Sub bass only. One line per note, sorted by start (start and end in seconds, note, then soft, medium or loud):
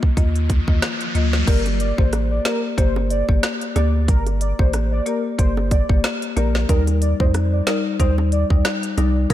0.17 0.62 D#2 loud
0.68 0.81 D#2 medium
1.15 1.44 D2 medium
1.48 1.93 G1 loud
1.98 2.40 A1 loud
2.78 3.23 G1 loud
3.29 3.41 G1 medium
3.76 4.10 D2 loud
4.08 4.53 G1 loud
4.59 5.01 A1 loud
5.39 5.84 G1 loud
5.89 6.02 G1 loud
6.37 6.66 A#1 medium
6.69 7.14 D#2 loud
7.20 7.62 F2 loud
8.00 8.45 D#2 medium
8.50 8.63 D#2 medium
8.98 9.26 C2 loud
9.30 9.34 F2 loud